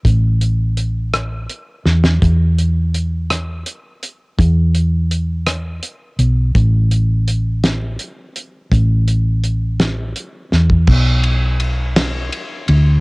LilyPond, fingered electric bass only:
\new Staff \with { instrumentName = "Fingered electric bass" } { \clef bass \time 6/8 \key a \mixolydian \tempo 4. = 55 a,,2 r8 e,8 | e,2 r4 | e,2 r8 b,,8 | a,,2 r4 |
a,,2 r8 e,8 | b,,2 r8 d,8 | }